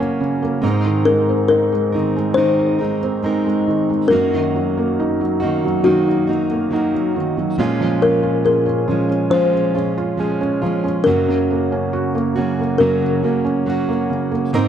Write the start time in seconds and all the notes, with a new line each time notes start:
Already playing: F#2 C#3 F#3 A#3 C#4 F#4
0.00 C#4
0.20 C#3
0.42 A#3
0.62 G#2 G#3 C4 D#4 A#4
0.85 D#3
1.05 G#3 A#4
1.29 C4
1.48 D#4 A#4
1.72 G#3
1.92 D#3 C4 D#4 A#4
2.16 G#3
2.34 D#3 G#3 C4 D#4 A#4 C5
2.59 G#4
2.79 G#3 C4 D#4 A#4
3.03 C4
3.23 G#3 C4 D#4 A#4
3.46 G#3
3.67 D#3
3.90 G#3
4.08 F#3 A#3 D#4 A#4
4.12 F#2 F#4
4.34 D#3
4.56 F#3
4.78 A#3
5.00 D#4
5.21 F#3
5.40 D#3 A#3 D#4 F#4
5.65 F#3
5.84 D#3 F#3 A#3 D#4 F#4
6.08 D#4
6.27 F#3 A#3 D#4 F#4
6.51 A#3
6.71 F#3 A#3 D#4 F#4
6.94 F#3
7.16 D#3
7.37 F#3
7.58 A#2 F3 G#3 C#4 F4
7.80 F3
8.02 C#4 A#4
8.23 F4
8.44 G#4 A#4
8.66 C#4
8.88 F3 G#3 C#4 F4
9.09 C#4
9.30 A#2 F3 G#3 C#4 F4 C5
9.53 G#4
9.74 G#3 C#4 F4
9.97 F4
10.17 F3 G#3 C#4 F4 G#4
10.41 C#4
10.62 F3 G#3 C#4 F4
10.84 C#4
11.04 F#2 C#3 F#3 A#3 C#4 F#4 A#4
11.28 C#3
11.51 A#3
11.72 C#4
11.93 F#4
12.15 A#3
12.36 C#3 F#3 A#3 C#4 F#4
12.59 A#3
12.78 F#2 C#3 F#3 A#3 C#4 F#4 A#4
13.02 F#4
13.23 F#3 A#3 C#4 F#4
13.45 C#4
13.66 F#3 A#3 C#4 F#4
13.89 A#3
14.10 C#3
14.32 A#3
14.53 G#2 G#3 C4 D#4 A#4